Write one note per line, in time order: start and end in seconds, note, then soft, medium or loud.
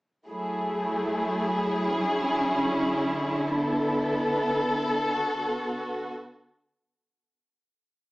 0.27 3.51 F#3 medium
0.27 1.89 A3 medium
0.27 5.13 E4 medium
0.27 3.51 G#4 medium
1.90 6.76 D3 medium
1.90 3.52 C#4 medium
3.53 5.15 B3 medium
3.53 6.77 A4 medium
5.17 6.79 B3 medium
5.17 6.79 F#4 medium